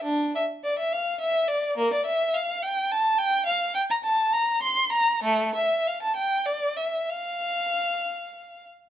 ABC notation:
X:1
M:6/8
L:1/16
Q:3/8=67
K:Dm
V:1 name="Violin"
D2 e2 d e f2 e2 d2 | [K:F] B, d e2 f2 g2 a2 g2 | f2 g b a2 b2 c'2 b2 | A,2 e2 f a g2 d2 e2 |
f8- f2 z2 |]